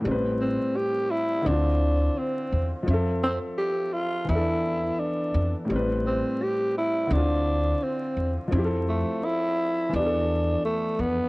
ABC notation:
X:1
M:4/4
L:1/16
Q:"Swing 16ths" 1/4=85
K:Am
V:1 name="Tenor saxophone"
z2 C2 G2 E2 D4 C3 z | z2 C2 G2 F2 E4 D3 z | z2 C2 G2 E2 D4 C3 z | z2 A,2 E4 D4 A,2 B,2 |]
V:2 name="Upright piano"
[A,,G,CB]8 [D,CEF]8 | [F,CAe]8 [E,B,DA]8 | [A,,G,CB]8 [D,CEF]8 | [F,CEGA]8 [E,B,DGA]8 |]
V:3 name="Upright bass" clef=bass
A,,,3 z4 z D,,4 z2 E,, z | F,,3 z4 z E,,4 z2 F,, z | A,,,3 z4 z D,,4 z2 E,, z | F,,3 z4 z E,,4 z2 F,, z |]